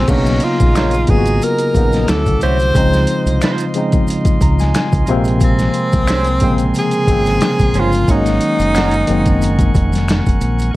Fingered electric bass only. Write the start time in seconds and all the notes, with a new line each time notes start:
0.09 B1
0.61 A#1
1.09 G#1
1.75 A#1
2.09 D2
2.27 C#2
2.43 C2
2.76 C#2
3.26 C2
4.42 C#2
4.93 C#2
5.08 A#1
5.93 C2
6.41 A#1
7.08 G#1
7.60 A#1
7.75 G1
8.08 G#1
8.59 F#1
9.09 F#1
9.75 F1
10.27 F#1
10.41 A#1